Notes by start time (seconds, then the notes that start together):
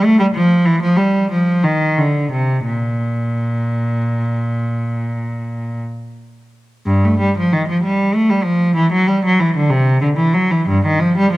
0.04 A3
0.20 G3
0.34 F3
0.65 E3
0.82 F3
0.97 G3
1.31 F3
1.64 D#3
1.98 D3
2.32 C3
2.66 A#2
6.86 G2
7.04 A3
7.20 G3
7.38 F3
7.53 D#3
7.69 F3
7.83 G3
8.15 A3
8.30 G3
8.44 F3
8.76 E3
8.92 F#3
9.07 G3
9.25 F#3
9.40 E3
9.57 D3
9.70 C3
10.01 D3
10.16 E3
10.34 F#3
10.51 E3
10.69 G2
10.86 D#3
11.00 F3
11.18 G3
11.32 F3